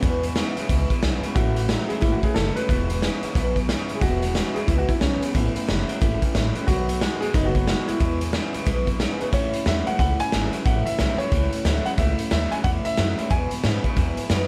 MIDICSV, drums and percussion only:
0, 0, Header, 1, 2, 480
1, 0, Start_track
1, 0, Tempo, 331858
1, 49, Time_signature, 4, 2, 24, 8
1, 20935, End_track
2, 0, Start_track
2, 0, Title_t, "Drums"
2, 37, Note_on_c, 9, 42, 83
2, 39, Note_on_c, 9, 36, 110
2, 181, Note_off_c, 9, 42, 0
2, 184, Note_off_c, 9, 36, 0
2, 337, Note_on_c, 9, 42, 68
2, 482, Note_off_c, 9, 42, 0
2, 516, Note_on_c, 9, 38, 107
2, 516, Note_on_c, 9, 42, 87
2, 660, Note_off_c, 9, 38, 0
2, 660, Note_off_c, 9, 42, 0
2, 821, Note_on_c, 9, 42, 60
2, 965, Note_off_c, 9, 42, 0
2, 1004, Note_on_c, 9, 36, 119
2, 1005, Note_on_c, 9, 42, 87
2, 1149, Note_off_c, 9, 36, 0
2, 1149, Note_off_c, 9, 42, 0
2, 1306, Note_on_c, 9, 36, 87
2, 1307, Note_on_c, 9, 42, 65
2, 1450, Note_off_c, 9, 36, 0
2, 1452, Note_off_c, 9, 42, 0
2, 1484, Note_on_c, 9, 38, 115
2, 1484, Note_on_c, 9, 42, 81
2, 1629, Note_off_c, 9, 38, 0
2, 1629, Note_off_c, 9, 42, 0
2, 1784, Note_on_c, 9, 42, 57
2, 1929, Note_off_c, 9, 42, 0
2, 1959, Note_on_c, 9, 42, 78
2, 1963, Note_on_c, 9, 36, 116
2, 2104, Note_off_c, 9, 42, 0
2, 2108, Note_off_c, 9, 36, 0
2, 2260, Note_on_c, 9, 42, 74
2, 2405, Note_off_c, 9, 42, 0
2, 2444, Note_on_c, 9, 38, 106
2, 2444, Note_on_c, 9, 42, 80
2, 2589, Note_off_c, 9, 38, 0
2, 2589, Note_off_c, 9, 42, 0
2, 2746, Note_on_c, 9, 42, 53
2, 2890, Note_off_c, 9, 42, 0
2, 2924, Note_on_c, 9, 42, 74
2, 2926, Note_on_c, 9, 36, 102
2, 3069, Note_off_c, 9, 42, 0
2, 3071, Note_off_c, 9, 36, 0
2, 3227, Note_on_c, 9, 36, 85
2, 3231, Note_on_c, 9, 42, 56
2, 3371, Note_off_c, 9, 36, 0
2, 3375, Note_off_c, 9, 42, 0
2, 3410, Note_on_c, 9, 38, 113
2, 3410, Note_on_c, 9, 42, 82
2, 3555, Note_off_c, 9, 38, 0
2, 3555, Note_off_c, 9, 42, 0
2, 3711, Note_on_c, 9, 42, 60
2, 3856, Note_off_c, 9, 42, 0
2, 3891, Note_on_c, 9, 36, 102
2, 3898, Note_on_c, 9, 42, 80
2, 4036, Note_off_c, 9, 36, 0
2, 4043, Note_off_c, 9, 42, 0
2, 4192, Note_on_c, 9, 42, 70
2, 4336, Note_off_c, 9, 42, 0
2, 4373, Note_on_c, 9, 38, 93
2, 4373, Note_on_c, 9, 42, 82
2, 4518, Note_off_c, 9, 38, 0
2, 4518, Note_off_c, 9, 42, 0
2, 4668, Note_on_c, 9, 42, 57
2, 4813, Note_off_c, 9, 42, 0
2, 4851, Note_on_c, 9, 36, 116
2, 4854, Note_on_c, 9, 42, 88
2, 4995, Note_off_c, 9, 36, 0
2, 4998, Note_off_c, 9, 42, 0
2, 5150, Note_on_c, 9, 36, 80
2, 5158, Note_on_c, 9, 42, 63
2, 5295, Note_off_c, 9, 36, 0
2, 5302, Note_off_c, 9, 42, 0
2, 5336, Note_on_c, 9, 38, 100
2, 5336, Note_on_c, 9, 42, 83
2, 5481, Note_off_c, 9, 38, 0
2, 5481, Note_off_c, 9, 42, 0
2, 5627, Note_on_c, 9, 42, 55
2, 5772, Note_off_c, 9, 42, 0
2, 5807, Note_on_c, 9, 36, 117
2, 5807, Note_on_c, 9, 42, 81
2, 5952, Note_off_c, 9, 36, 0
2, 5952, Note_off_c, 9, 42, 0
2, 6108, Note_on_c, 9, 42, 71
2, 6253, Note_off_c, 9, 42, 0
2, 6293, Note_on_c, 9, 38, 105
2, 6293, Note_on_c, 9, 42, 83
2, 6438, Note_off_c, 9, 38, 0
2, 6438, Note_off_c, 9, 42, 0
2, 6591, Note_on_c, 9, 42, 48
2, 6736, Note_off_c, 9, 42, 0
2, 6770, Note_on_c, 9, 36, 108
2, 6773, Note_on_c, 9, 42, 77
2, 6914, Note_off_c, 9, 36, 0
2, 6917, Note_off_c, 9, 42, 0
2, 7069, Note_on_c, 9, 36, 84
2, 7071, Note_on_c, 9, 42, 59
2, 7214, Note_off_c, 9, 36, 0
2, 7215, Note_off_c, 9, 42, 0
2, 7247, Note_on_c, 9, 38, 105
2, 7247, Note_on_c, 9, 42, 78
2, 7392, Note_off_c, 9, 38, 0
2, 7392, Note_off_c, 9, 42, 0
2, 7556, Note_on_c, 9, 42, 61
2, 7700, Note_off_c, 9, 42, 0
2, 7736, Note_on_c, 9, 36, 111
2, 7740, Note_on_c, 9, 42, 81
2, 7881, Note_off_c, 9, 36, 0
2, 7884, Note_off_c, 9, 42, 0
2, 8039, Note_on_c, 9, 42, 68
2, 8183, Note_off_c, 9, 42, 0
2, 8224, Note_on_c, 9, 38, 100
2, 8224, Note_on_c, 9, 42, 76
2, 8368, Note_off_c, 9, 38, 0
2, 8368, Note_off_c, 9, 42, 0
2, 8520, Note_on_c, 9, 42, 58
2, 8665, Note_off_c, 9, 42, 0
2, 8702, Note_on_c, 9, 36, 114
2, 8702, Note_on_c, 9, 42, 84
2, 8846, Note_off_c, 9, 42, 0
2, 8847, Note_off_c, 9, 36, 0
2, 8999, Note_on_c, 9, 42, 67
2, 9000, Note_on_c, 9, 36, 83
2, 9144, Note_off_c, 9, 42, 0
2, 9145, Note_off_c, 9, 36, 0
2, 9182, Note_on_c, 9, 38, 111
2, 9182, Note_on_c, 9, 42, 79
2, 9327, Note_off_c, 9, 38, 0
2, 9327, Note_off_c, 9, 42, 0
2, 9478, Note_on_c, 9, 42, 56
2, 9623, Note_off_c, 9, 42, 0
2, 9657, Note_on_c, 9, 42, 88
2, 9660, Note_on_c, 9, 36, 107
2, 9802, Note_off_c, 9, 42, 0
2, 9805, Note_off_c, 9, 36, 0
2, 9964, Note_on_c, 9, 42, 69
2, 10109, Note_off_c, 9, 42, 0
2, 10145, Note_on_c, 9, 38, 106
2, 10145, Note_on_c, 9, 42, 78
2, 10290, Note_off_c, 9, 38, 0
2, 10290, Note_off_c, 9, 42, 0
2, 10446, Note_on_c, 9, 42, 59
2, 10590, Note_off_c, 9, 42, 0
2, 10621, Note_on_c, 9, 36, 114
2, 10621, Note_on_c, 9, 42, 88
2, 10766, Note_off_c, 9, 36, 0
2, 10766, Note_off_c, 9, 42, 0
2, 10919, Note_on_c, 9, 42, 64
2, 10920, Note_on_c, 9, 36, 82
2, 11064, Note_off_c, 9, 36, 0
2, 11064, Note_off_c, 9, 42, 0
2, 11101, Note_on_c, 9, 38, 121
2, 11101, Note_on_c, 9, 42, 80
2, 11246, Note_off_c, 9, 38, 0
2, 11246, Note_off_c, 9, 42, 0
2, 11405, Note_on_c, 9, 42, 59
2, 11550, Note_off_c, 9, 42, 0
2, 11578, Note_on_c, 9, 36, 111
2, 11581, Note_on_c, 9, 42, 79
2, 11723, Note_off_c, 9, 36, 0
2, 11726, Note_off_c, 9, 42, 0
2, 11876, Note_on_c, 9, 42, 69
2, 12020, Note_off_c, 9, 42, 0
2, 12049, Note_on_c, 9, 38, 112
2, 12049, Note_on_c, 9, 42, 75
2, 12194, Note_off_c, 9, 38, 0
2, 12194, Note_off_c, 9, 42, 0
2, 12355, Note_on_c, 9, 42, 56
2, 12500, Note_off_c, 9, 42, 0
2, 12534, Note_on_c, 9, 42, 84
2, 12535, Note_on_c, 9, 36, 115
2, 12679, Note_off_c, 9, 36, 0
2, 12679, Note_off_c, 9, 42, 0
2, 12834, Note_on_c, 9, 36, 79
2, 12835, Note_on_c, 9, 42, 66
2, 12979, Note_off_c, 9, 36, 0
2, 12980, Note_off_c, 9, 42, 0
2, 13015, Note_on_c, 9, 38, 104
2, 13015, Note_on_c, 9, 42, 78
2, 13160, Note_off_c, 9, 38, 0
2, 13160, Note_off_c, 9, 42, 0
2, 13315, Note_on_c, 9, 42, 53
2, 13460, Note_off_c, 9, 42, 0
2, 13490, Note_on_c, 9, 42, 90
2, 13491, Note_on_c, 9, 36, 104
2, 13635, Note_off_c, 9, 42, 0
2, 13636, Note_off_c, 9, 36, 0
2, 13790, Note_on_c, 9, 42, 74
2, 13935, Note_off_c, 9, 42, 0
2, 13972, Note_on_c, 9, 38, 108
2, 13972, Note_on_c, 9, 42, 74
2, 14117, Note_off_c, 9, 38, 0
2, 14117, Note_off_c, 9, 42, 0
2, 14273, Note_on_c, 9, 42, 53
2, 14418, Note_off_c, 9, 42, 0
2, 14452, Note_on_c, 9, 36, 112
2, 14454, Note_on_c, 9, 42, 84
2, 14596, Note_off_c, 9, 36, 0
2, 14598, Note_off_c, 9, 42, 0
2, 14746, Note_on_c, 9, 42, 65
2, 14891, Note_off_c, 9, 42, 0
2, 14933, Note_on_c, 9, 38, 98
2, 14933, Note_on_c, 9, 42, 76
2, 15077, Note_off_c, 9, 38, 0
2, 15077, Note_off_c, 9, 42, 0
2, 15228, Note_on_c, 9, 42, 56
2, 15373, Note_off_c, 9, 42, 0
2, 15410, Note_on_c, 9, 42, 77
2, 15413, Note_on_c, 9, 36, 115
2, 15554, Note_off_c, 9, 42, 0
2, 15558, Note_off_c, 9, 36, 0
2, 15714, Note_on_c, 9, 42, 64
2, 15859, Note_off_c, 9, 42, 0
2, 15891, Note_on_c, 9, 38, 104
2, 15891, Note_on_c, 9, 42, 81
2, 16035, Note_off_c, 9, 38, 0
2, 16035, Note_off_c, 9, 42, 0
2, 16194, Note_on_c, 9, 42, 53
2, 16339, Note_off_c, 9, 42, 0
2, 16370, Note_on_c, 9, 42, 80
2, 16372, Note_on_c, 9, 36, 113
2, 16515, Note_off_c, 9, 42, 0
2, 16517, Note_off_c, 9, 36, 0
2, 16670, Note_on_c, 9, 42, 69
2, 16815, Note_off_c, 9, 42, 0
2, 16851, Note_on_c, 9, 38, 108
2, 16851, Note_on_c, 9, 42, 87
2, 16996, Note_off_c, 9, 38, 0
2, 16996, Note_off_c, 9, 42, 0
2, 17152, Note_on_c, 9, 42, 54
2, 17296, Note_off_c, 9, 42, 0
2, 17323, Note_on_c, 9, 42, 85
2, 17328, Note_on_c, 9, 36, 108
2, 17467, Note_off_c, 9, 42, 0
2, 17473, Note_off_c, 9, 36, 0
2, 17626, Note_on_c, 9, 42, 71
2, 17771, Note_off_c, 9, 42, 0
2, 17807, Note_on_c, 9, 38, 116
2, 17807, Note_on_c, 9, 42, 84
2, 17952, Note_off_c, 9, 38, 0
2, 17952, Note_off_c, 9, 42, 0
2, 18105, Note_on_c, 9, 42, 57
2, 18250, Note_off_c, 9, 42, 0
2, 18287, Note_on_c, 9, 42, 83
2, 18288, Note_on_c, 9, 36, 124
2, 18432, Note_off_c, 9, 36, 0
2, 18432, Note_off_c, 9, 42, 0
2, 18585, Note_on_c, 9, 42, 68
2, 18729, Note_off_c, 9, 42, 0
2, 18767, Note_on_c, 9, 38, 99
2, 18767, Note_on_c, 9, 42, 78
2, 18912, Note_off_c, 9, 38, 0
2, 18912, Note_off_c, 9, 42, 0
2, 19070, Note_on_c, 9, 42, 54
2, 19215, Note_off_c, 9, 42, 0
2, 19244, Note_on_c, 9, 42, 71
2, 19247, Note_on_c, 9, 36, 114
2, 19388, Note_off_c, 9, 42, 0
2, 19392, Note_off_c, 9, 36, 0
2, 19539, Note_on_c, 9, 42, 68
2, 19684, Note_off_c, 9, 42, 0
2, 19723, Note_on_c, 9, 38, 114
2, 19723, Note_on_c, 9, 42, 74
2, 19868, Note_off_c, 9, 38, 0
2, 19868, Note_off_c, 9, 42, 0
2, 20016, Note_on_c, 9, 42, 47
2, 20022, Note_on_c, 9, 36, 66
2, 20161, Note_off_c, 9, 42, 0
2, 20167, Note_off_c, 9, 36, 0
2, 20197, Note_on_c, 9, 42, 81
2, 20203, Note_on_c, 9, 36, 106
2, 20342, Note_off_c, 9, 42, 0
2, 20348, Note_off_c, 9, 36, 0
2, 20498, Note_on_c, 9, 42, 68
2, 20642, Note_off_c, 9, 42, 0
2, 20680, Note_on_c, 9, 38, 113
2, 20680, Note_on_c, 9, 42, 90
2, 20824, Note_off_c, 9, 38, 0
2, 20824, Note_off_c, 9, 42, 0
2, 20935, End_track
0, 0, End_of_file